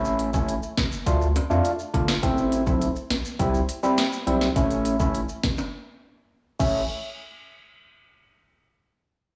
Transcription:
Already playing: A1 A3 C#4 E4
0.05 maracas
0.19 closed hi-hat, maracas
0.34 A3 C#4 E4, kick, maracas
0.49 closed hi-hat, maracas
0.63 maracas
0.77 A1, kick, snare, closed hi-hat
0.92 maracas
1.06 D2 A3 D4 F4, kick, closed hi-hat, maracas
1.22 maracas
1.36 closed hi-hat, high timbale, maracas
1.50 F2 A3 D4 F4, maracas
1.65 closed hi-hat, maracas
1.79 maracas
1.94 G1 A3 D4 F4, kick, closed hi-hat
2.08 snare, maracas
2.23 A1 A3 C4 E4, kick, closed hi-hat, maracas
2.38 maracas
2.52 closed hi-hat, maracas
2.67 B1 A3 C4 E4, kick, maracas
2.82 closed hi-hat, maracas
2.96 maracas
3.10 A1, snare, closed hi-hat
3.25 maracas
3.39 C2 G3 C4 E4, kick, closed hi-hat, maracas
3.55 maracas
3.69 closed hi-hat, maracas
3.83 G3 C4 E4, maracas
3.98 snare, closed hi-hat, maracas
4.12 maracas
4.27 B1 G3 C4 E4, closed hi-hat
4.41 snare, maracas
4.56 A1 A3 C#4 E4, kick, closed hi-hat, maracas
4.71 closed hi-hat, maracas
4.85 closed hi-hat, maracas
5.00 A3 C#4 E4, kick, maracas
5.15 closed hi-hat, maracas
5.29 maracas
5.43 A1, kick, snare, closed hi-hat
5.58 high timbale, maracas
6.60 A1 A3 C#4 E4, kick, crash, maracas

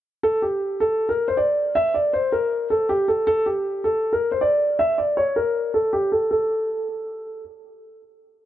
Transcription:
0.23 A4
0.42 G4
0.80 A4
1.09 A#4
1.28 C5
1.37 D5
1.75 E5
1.94 D5
2.13 C5
2.32 A#4
2.70 A4
2.89 G4
3.08 A4
3.27 A4
3.46 G4
3.84 A4
4.13 A#4
4.32 C5
4.41 D5
4.79 E5
4.98 D5
5.17 C#5
5.36 A#4
5.74 A4
5.93 G4
6.12 A4
6.31 A4

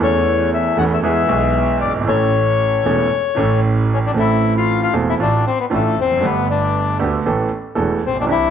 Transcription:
0.00 E2 E3 A3 C#4 A4 C#5
0.54 E5
0.77 E2 E3 A3 C#4 A4 F#5
0.94 E5
1.03 E2 E3 G#3 B3 G#4 E5
1.27 B1 B2 E3 G#3 B3 G#4
1.81 G1 D5
1.86 F#1
1.94 G1
2.01 G#1 E3
2.06 A1 A2 A3 C#4 A4 C#5
2.84 E1 E2 E3 A3 C#4 A4
3.35 A1 A2 E3 A3 C#4 A4
3.94 C#4
4.07 D4
4.13 A1 A2 E3 A3 C4
4.17 E4 A4
4.57 F4
4.83 F4
4.93 E1 E2 E3 A3 C4 A4
5.09 E4
5.20 A1 A2 E3 A3 D4 F4
5.47 C4
5.60 B3
5.70 A1 A2 E3 A3 D4 F4
5.99 F1 C4
6.03 E2
6.11 F2
6.17 F#2 D3
6.22 G1 G2 A3 B3 G4
6.50 D4
6.99 D2 D3 A3 B3 G4
7.26 A1 A2 E3 A3 B3 A4
7.75 E1 E2 E3 A3 B3 A4
8.03 A#1 C4
8.08 A1
8.15 A#1
8.20 B1 D4
8.25 C2 C3 E3 C4 D4
8.29 E4 G4

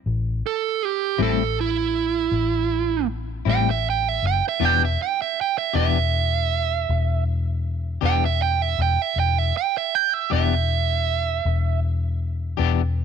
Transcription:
0.06 A1
0.47 A4
0.85 G4
1.18 A1 A2 G3 C4 E4
1.23 A4
1.61 E4
2.31 A1
3.45 A1 A2 G3 C4 E4
3.51 G5
3.71 E5
3.90 G5
4.09 E5
4.22 F#1
4.27 G5
4.49 E5
4.60 E1 E3 B3 D4 G4
4.65 G5
4.85 E5
5.02 G5
5.22 E5
5.41 G5
5.58 E5
5.73 E1 E3 B3 D4 G4 E5
6.89 E1
8.01 E1 E3 B3 D4 G4
8.06 G5
8.25 E5
8.42 G5
8.62 E5
8.78 E1 G5
9.02 E5
9.16 E1 G5
9.38 E5
9.57 G5
9.78 E5
9.95 G5
10.14 E5
10.30 E1 E3 B3 D4 G4 E5
11.45 E1
12.57 E1 E3 B3 D4 G4

